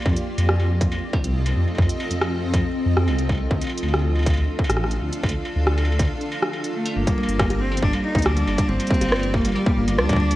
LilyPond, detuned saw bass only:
\new Staff \with { instrumentName = "Detuned saw bass" } { \clef bass \time 4/4 \key g \minor \tempo 4 = 139 f,16 r8 f,4~ f,16 f,16 r8 c,8. f,16 r16 | f,16 r8 f,4~ f,16 r8 f,16 f,16 c,16 c,8. | d,16 r8 d,4~ d,16 d,16 r8 a,,8. d,16 r16 | d,16 r8 d,4~ d,16 r2 |
g,,16 r8 g,,4~ g,,16 g,,16 r8 d,8. g,,16 r16 | g,,16 r8 g,,4~ g,,16 r8 g,,16 g,,16 d,16 d,8. | }